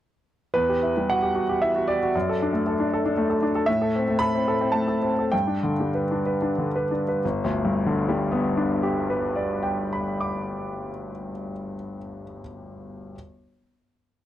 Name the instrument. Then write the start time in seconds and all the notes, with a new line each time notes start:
grand piano
0.54 E2 B4
0.69 G4
0.82 E4
0.97 G3
1.10 F#4 F#5
1.23 G4
1.35 F#4
1.49 G4
1.62 E4 E5
1.76 F#4
1.88 G4 D5
2.03 F#4
2.15 F#2
2.29 A4
2.42 D4
2.53 A3
2.67 A4
2.80 D4
2.93 A4
3.06 D4
3.17 A3
3.30 A4
3.42 D4
3.55 A4
3.66 A2 E5
3.82 A4
3.96 C4
4.08 A3
4.19 A4 B5
4.35 C4
4.48 A4
4.61 C4
4.72 A3 A5
4.88 A4
5.02 C4
5.19 A4
5.32 G2 G5
5.47 D4
5.63 D3
5.80 G3
5.95 B4
6.11 D4
6.26 B4
6.42 D4
6.58 D3
6.76 B4
6.91 D4
7.08 B4
7.25 G1
7.44 D2
7.65 G2
7.86 D3
8.09 G3
8.32 B3
8.57 D4
8.83 G4
9.10 B4
9.36 D5
9.63 G5
9.93 B5
10.21 D6